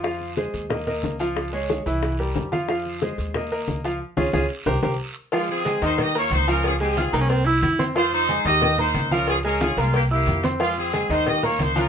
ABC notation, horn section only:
X:1
M:4/4
L:1/8
Q:1/4=182
K:Fm
V:1 name="Horn section"
z8 | z8 | z8 | z8 |
[A,F] [CA]2 [Ec] [Ge] [Fd] [Ec] [DB] | [DA] [CA]3 z4 | [Fc] [Ec]2 [Ge]2 [Ec]2 [DB] | [DA] [DB] [DA] [A,F] [B,G] [B,G]2 z |
[A,F] [CA]2 [Ec] [Ge] [Fd] [Ec] [DB] |]